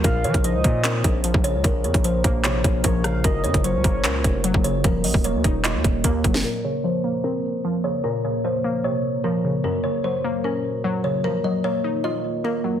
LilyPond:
<<
  \new Staff \with { instrumentName = "Soft synth lead" } { \time 4/4 \key bes \minor \tempo 4 = 150 f''4 ees''2 r4 | r2. des''8 f''8 | ees''4 des''2 r4 | r1 |
r1 | r1 | r1 | r1 | }
  \new Staff \with { instrumentName = "Kalimba" } { \time 4/4 \key bes \minor bes'8 des''8 c''4 bes'4. des''8 | bes'8 des''8 c''4 des''4 bes'4 | bes'8 des''8 c''4 bes'4. des''8 | bes'8 ees''8 des''4 ees''4 bes'4 |
bes'8 des''8 c''4 bes'4. des''8 | bes'8 des''8 c''4 des''4 bes'4 | bes'8 des''8 c''4 bes'4. des''8 | bes'8 ees''8 des''4 ees''4 bes'4 | }
  \new Staff \with { instrumentName = "Ambient pad" } { \time 4/4 \key bes \minor << { <bes bes'>1~ | <bes bes'>1 | <bes ges'>1 | <bes f'>1 |
<bes bes'>1~ | <bes bes'>1 | <bes ges'>1 | <bes f'>1 | } \\ { bes,1~ | bes,1~ | bes,1 | ees1 |
bes,1~ | bes,1~ | bes,1 | ees1 | } >> }
  \new Staff \with { instrumentName = "Synth pluck" } { \clef bass \time 4/4 \key bes \minor bes,8 des8 f8 bes8 c'4 f8 des8 | bes,8 des8 f8 bes8 c4 f8 des8 | ges,8 des8 ges8 bes8 des'4 ges8 des8 | f8 ges8 bes8 ees'8 f'4 bes8 ges8 |
bes,8 des8 f8 bes8 c'4 f8 des8 | bes,8 des8 f8 bes8 c4 f8 des8 | ges,8 des8 ges8 bes8 des'4 ges8 des8 | f8 ges8 bes8 ees'8 f'4 bes8 ges8 | }
  \new Staff \with { instrumentName = "808-style bass" } { \clef bass \time 4/4 \key bes \minor bes,,8 f16 bes,,8 des,16 bes,4 bes,,8. bes,,8 des,16 | bes,,8 f,16 bes,,8. bes,,4 bes,,8 bes,,4 | ges,,8 ges,16 ges,,8 des,16 ges,,8 des,8 f,,8. ges,,8. | ees,,8 bes,,16 ees,,8 ees,16 ees,,8. ees,16 ees,,8 ees,8 ges,,8 |
r1 | r1 | r1 | r1 | }
  \new DrumStaff \with { instrumentName = "Drums" } \drummode { \time 4/4 <hh bd>8 hh16 <hh bd>16 hh8 <hh bd>8 <hc hh>8 <hh bd>8 hh16 bd16 hh8 | <hh bd>8 hh16 <hh bd>16 hh8 <hh bd>8 <hc hh>8 <hh bd>8 <hh bd>8 <hh ss>8 | <hh bd>8 hh16 <hh bd>16 hh8 <hh bd>8 <hc hh>8 <hh bd>8 hh16 bd16 hh8 | <hh bd>8 hho16 bd16 hh8 <hh bd>8 <hc hh>8 <hh bd>8 <hh bd>8 <hh bd>16 sn16 |
r4 r4 r4 r4 | r4 r4 r4 r4 | r4 r4 r4 r4 | r4 r4 r4 r4 | }
>>